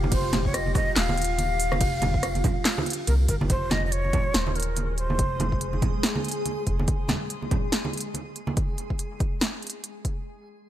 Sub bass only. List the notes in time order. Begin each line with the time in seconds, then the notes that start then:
Already playing: F1
0.12 F1
0.96 D#1
1.81 F1
3.08 C2
3.29 G1
3.50 F1
4.35 D#1
5.19 F1
6.67 F1